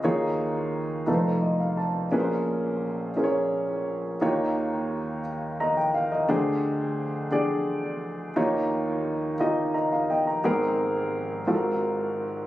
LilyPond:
<<
  \new Staff \with { instrumentName = "Upright piano" } { \time 6/8 \key aes \major \tempo 4. = 58 << { r2 ees''16 f''16 a''8 | r2. | r2 <ees'' bes''>16 g''16 f''16 ees''16~ | ees''16 r2 r8. |
r2 <ees'' bes''>16 f''16 <ees'' g''>16 bes''16~ | bes''16 r2 r8. | } \\ { <ees' f' aes' des''>4. <ees' f' a' ces'' c''>4. | <des' aes' bes' ces'' c''>4. <des' aes' bes' c'' des''>4. | <ees' f' g' des''>4. r4. | <d' g' aes' c''>4. <d' g' aes' d''>4. |
<ees' f' g' des''>4. <ees' f' g' ees''>4. | <ces' c' g' aes' bes'>4. <c' f' ges' a' bes'>4. | } >> }
  \new Staff \with { instrumentName = "Upright piano" } { \clef bass \time 6/8 \key aes \major <ees, ees>4. <f,, f,>4. | <bes,, bes,>2. | <ees, ees>2. | <d, d>2. |
<ees, ees>2. | <aes,, aes,>4. <aes,, aes,>4. | }
>>